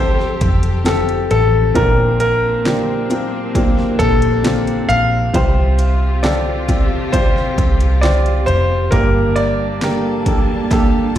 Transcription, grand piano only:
Already playing: C5
0.86 A4
1.31 A4
1.75 A#4
2.20 A#4
3.99 A4
4.89 F5
6.23 D5
7.12 C5
8.01 D5
8.46 C5
8.91 A#4
9.36 D5

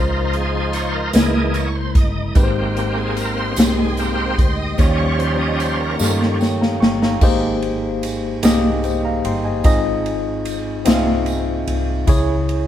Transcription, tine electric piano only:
Already playing: C#3 G#3 C#4 F4 C5
1.13 C#3 G#3 C#4 E4 G#4
1.21 A#4
2.35 G#2 G#3 D#4 G4 B4
2.43 C5
3.57 G#3 D#4 G4 G#4
3.65 A#4
4.78 D#3 A#3 D#4 G4 C#5
5.99 A#3 D#4 G4 A4
6.07 A#4
6.41 C#5 G5
6.61 F5 A#5
6.80 G5 C#6
7.02 F5 A#5
7.21 G#2 A#3 D#4 G4 G#4 C5
8.43 A#3 D#4 G4 G#4 D#5
8.84 C5 G5
9.05 F5 A#5
9.26 G5 C6
9.44 D#5 G#5
9.64 G#2 C4 D#4 F4 G#4 D#5
10.85 C4 D#4 F4 G#4 E5
10.94 F5
12.07 C#3 E4 G#4 C#5

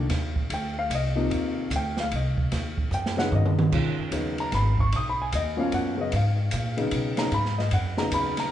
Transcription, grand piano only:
0.54 G5
0.79 F5
0.95 D#5
1.15 C3 F3 A#3 D#4
1.76 G5
2.00 F5
2.16 D#5
2.94 G5
3.17 C#3 F#3 B3 D#4 F#5
3.35 D#5
3.72 D#3 G#3 C#4 F4
4.12 C#3 F#3 B3 D#4
4.40 A#5
4.55 B5
4.80 C#6
4.96 D#6
5.09 B5
5.22 G#5
5.35 D#5
5.57 B2 F3 A#3 C#4 F5
5.74 F#5
5.97 C#3 F#3 B3 F#4
6.01 D#5
6.16 F5
6.77 C#3 F#3 B3 D#4
7.17 C#3 F#3 B3 D#4 A#5
7.34 B5
7.58 D#5
7.74 F#5
7.98 C#3 F#3 B3 D#4 A#5
8.14 B5
8.40 A#5

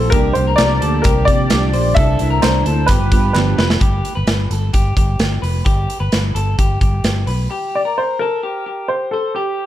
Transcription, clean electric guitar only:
Already playing: C5
0.13 G4
0.47 A#4
0.82 A4
1.05 G4
1.27 G4
1.74 C5
1.96 A4
2.30 A#4
2.66 A4
2.89 G4
3.12 G4
3.58 B4
3.80 G4
4.15 B4
4.51 A4
4.73 G4
4.97 G4
5.42 B4
5.65 G4
6.00 B4
6.35 A4
6.59 G4
6.81 G4
7.27 B4
7.51 G4
7.85 A#4
8.21 A4
8.43 G4
8.66 G4
9.13 C5
9.36 G4

